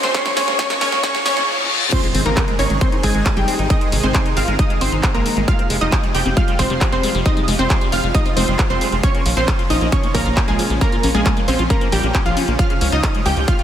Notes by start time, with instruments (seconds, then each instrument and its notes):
Already playing: supersaw synth C#3 F3 G#3 F4 G#4, riser
0.03 acid bass A#3, synth pluck C4 C5 C6, snare, closed hi-hat
0.14 synth pluck C#4 C#5 C#6, acid bass C#4, kick, snare, closed hi-hat
0.26 acid bass A#3, snare, closed hi-hat
0.37 synth pluck C#4 C#5 C#6, acid bass C#4, snare, open hi-hat
0.48 acid bass A#3, snare, closed hi-hat
0.59 synth pluck C#4 C#5 C#6, acid bass C#4, kick, snare, closed hi-hat
0.70 acid bass A#3, snare, closed hi-hat
0.81 synth pluck C#4 C#5 C#6, acid bass C#4, snare, open hi-hat
0.92 acid bass A#3, snare, closed hi-hat
1.03 acid bass C#4, synth pluck C#4 C#5 C#6, kick, snare, closed hi-hat, reverse cymbal
1.15 acid bass A#3, snare, closed hi-hat
1.26 acid bass C#4, synth pluck C#4 C#5 C#6, snare, open hi-hat
1.37 acid bass A#3, snare, closed hi-hat
1.92 supersaw synth C3 D#3 G#3 D#4 G#4, acid bass D#3, synth pluck C4 C5 C6, kick, closed hi-hat, crash, impact
2.03 acid bass G#3, closed hi-hat
2.15 analog synth bass G#1, acid bass C4, open hi-hat
2.26 analog synth bass G#1, synth pluck A#3 A#4 A#5, acid bass D#4, closed hi-hat
2.37 acid bass C4, kick, clap, closed hi-hat
2.48 acid bass G#3, closed hi-hat
2.59 analog synth bass G#1, acid bass D#3, synth pluck C#4 C#5 C#6, open hi-hat
2.70 analog synth bass G#1, acid bass G#3, closed hi-hat
2.81 acid bass C4, synth pluck C4 C5 C6, kick, closed hi-hat
2.92 acid bass D#4, closed hi-hat
3.03 analog synth bass G#1, synth pluck G#3 G#4 G#5, acid bass C4, kick, open hi-hat
3.15 analog synth bass G#1, acid bass G#3, closed hi-hat
3.26 acid bass D#3, kick, clap, closed hi-hat
3.37 analog synth bass G#1, synth pluck G3 G4 G5, acid bass G#3, closed hi-hat
3.48 acid bass C4, open hi-hat
3.59 analog synth bass G#1, acid bass D#4, closed hi-hat
3.70 acid bass C4, synth pluck D#4 D#5 D#6, kick, closed hi-hat
3.81 acid bass G#3, closed hi-hat
3.92 analog synth bass G#1, acid bass D#3, open hi-hat
4.03 analog synth bass G#1, acid bass G#3, synth pluck C4 C5 C6, closed hi-hat
4.14 acid bass C4, kick, clap, closed hi-hat
4.26 acid bass D#4, closed hi-hat
4.37 analog synth bass G#1, acid bass C4, synth pluck F4 F5 F6, open hi-hat
4.48 analog synth bass G#1, acid bass G#3, closed hi-hat
4.59 acid bass D#3, synth pluck D#4 D#5 D#6, kick, closed hi-hat
4.70 acid bass G#3, closed hi-hat
4.81 analog synth bass G#1, acid bass C4, synth pluck C4 C5 C6, open hi-hat
4.92 analog synth bass G#1, acid bass D#4
5.03 acid bass C4, kick, clap, closed hi-hat
5.14 analog synth bass G#1, acid bass G#3, synth pluck A#3 A#4 A#5, closed hi-hat
5.26 acid bass D#3, open hi-hat
5.37 analog synth bass G#1, acid bass G#3, closed hi-hat
5.48 supersaw synth C3 F3 G3 F4, acid bass G#3, synth pluck F4 F5 F6, kick, closed hi-hat
5.59 acid bass C4, closed hi-hat
5.70 analog synth bass F1, acid bass G#3, open hi-hat
5.81 analog synth bass F1, acid bass G3, synth pluck D#4 D#5 D#6, closed hi-hat
5.92 acid bass F3, kick, clap, closed hi-hat
6.03 acid bass G3, closed hi-hat
6.14 analog synth bass F1, acid bass G#3, synth pluck G4 G5 G6, open hi-hat
6.26 analog synth bass F1, acid bass C4, closed hi-hat
6.37 acid bass G#3, synth pluck F4 F5 F6, kick, closed hi-hat
6.48 acid bass G3, closed hi-hat
6.59 analog synth bass F1, acid bass F3, synth pluck C4 C5 C6, kick, open hi-hat
6.70 analog synth bass F1, acid bass G3, closed hi-hat
6.81 acid bass G#3, kick, clap, closed hi-hat
6.92 analog synth bass F1, acid bass C4, synth pluck C4 C5 C6, closed hi-hat
7.03 acid bass G#3, open hi-hat
7.15 analog synth bass F1, acid bass G3, closed hi-hat
7.26 acid bass F3, synth pluck D#4 D#5 D#6, kick, closed hi-hat
7.37 acid bass G3, closed hi-hat
7.48 analog synth bass F1, acid bass G#3, open hi-hat
7.59 analog synth bass F1, synth pluck C4 C5 C6, acid bass C4, closed hi-hat
7.70 acid bass G#3, kick, clap, closed hi-hat
7.81 acid bass G3, closed hi-hat
7.92 analog synth bass F1, acid bass F3, synth pluck F4 F5 F6, open hi-hat
8.03 analog synth bass F1, acid bass G3
8.14 acid bass G#3, synth pluck D#4 D#5 D#6, kick, closed hi-hat
8.26 acid bass C4, closed hi-hat
8.37 analog synth bass F1, acid bass G#3, synth pluck C4 C5 C6, open hi-hat
8.48 analog synth bass F1, acid bass G3, closed hi-hat
8.59 acid bass F3, kick, clap, closed hi-hat
8.70 analog synth bass F1, acid bass G3, synth pluck C4 C5 C6, closed hi-hat
8.81 acid bass G#3, open hi-hat
8.92 analog synth bass F1, acid bass C4, closed hi-hat
9.03 supersaw synth A#2 C#3 C#4, synth pluck C#4 C#5 C#6, acid bass C#4, kick, closed hi-hat
9.15 acid bass A#3, closed hi-hat
9.26 analog synth bass A#1, acid bass F3, open hi-hat
9.37 analog synth bass A#1, acid bass A#3, synth pluck C4 C5 C6, closed hi-hat
9.48 acid bass C#4, kick, clap, closed hi-hat
9.59 acid bass F4, closed hi-hat
9.70 analog synth bass A#1, acid bass C#4, synth pluck D#4 D#5 D#6, open hi-hat
9.81 analog synth bass A#1, acid bass A#3, closed hi-hat
9.92 acid bass F3, synth pluck C#4 C#5 C#6, kick, closed hi-hat
10.03 acid bass A#3, closed hi-hat
10.14 analog synth bass A#1, synth pluck A#3 A#4 A#5, acid bass C#4, kick, open hi-hat
10.26 analog synth bass A#1, acid bass F4, closed hi-hat
10.37 acid bass C#4, kick, clap, closed hi-hat
10.48 analog synth bass A#1, synth pluck G#3 G#4 G#5, acid bass A#3, closed hi-hat
10.59 acid bass F3, open hi-hat
10.70 analog synth bass A#1, acid bass A#3, closed hi-hat
10.81 synth pluck A#3 A#4 A#5, acid bass C#4, kick, closed hi-hat
10.92 acid bass F4, closed hi-hat
11.03 analog synth bass A#1, acid bass C#4, open hi-hat
11.14 analog synth bass A#1, synth pluck G#3 G#4 G#5, acid bass A#3, closed hi-hat
11.26 acid bass F3, kick, clap, closed hi-hat
11.37 acid bass A#3, closed hi-hat
11.48 analog synth bass A#1, synth pluck C4 C5 C6, acid bass C#4, open hi-hat
11.59 analog synth bass A#1, acid bass F4, closed hi-hat
11.70 synth pluck A#3 A#4 A#5, acid bass C#4, kick, closed hi-hat
11.81 acid bass A#3, closed hi-hat
11.92 analog synth bass A#1, acid bass F3, synth pluck G3 G4 G5, open hi-hat
12.03 analog synth bass A#1, acid bass A#3, closed hi-hat
12.15 acid bass C#4, kick, clap, closed hi-hat
12.26 analog synth bass A#1, synth pluck F3 F4 F5, acid bass F4, closed hi-hat
12.37 acid bass C#4, open hi-hat
12.48 analog synth bass A#1, acid bass A#3, closed hi-hat
12.59 supersaw synth G#2 F4, acid bass F3, synth pluck F4 F5 F6, kick, closed hi-hat
12.70 acid bass G#3, closed hi-hat
12.81 analog synth bass C#2, acid bass C#4, open hi-hat
12.92 analog synth bass C#2, synth pluck D#4 D#5 D#6, acid bass F4, closed hi-hat
13.03 acid bass C#4, kick, clap, closed hi-hat
13.15 acid bass G#3, closed hi-hat
13.26 analog synth bass C#2, acid bass F3, synth pluck G4 G5 G6, open hi-hat
13.37 analog synth bass C#2, acid bass G#3, closed hi-hat
13.48 acid bass C#4, synth pluck F4 F5 F6, kick, closed hi-hat
13.59 acid bass F4, closed hi-hat